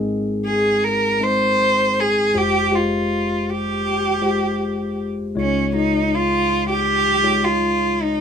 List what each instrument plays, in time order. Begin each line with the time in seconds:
Already playing: tine electric piano G#1 G#2 G#3 C4 D#4 G#4 A#4
0.46 cello G#4
0.84 cello A#4
1.20 tine electric piano G#3 C4 D#4 A#4, cello C5
2.00 cello G#4
2.34 tine electric piano F1 F2 G#3 F4 G4 C5, cello G4
2.72 tine electric piano G#3 F4 G4 C5, cello F4
3.50 cello G4
4.22 tine electric piano G#3 F4 G4 C5
5.35 tine electric piano C#2 C#3 G#3 D#4 F4 C#5
5.40 cello C#4
5.72 tine electric piano G#3 D#4 F4 C#5
5.77 cello D#4
6.14 cello F4
6.70 cello G4
7.23 tine electric piano G#3 D#4 F4 C#5
7.45 cello F4
8.03 cello D#4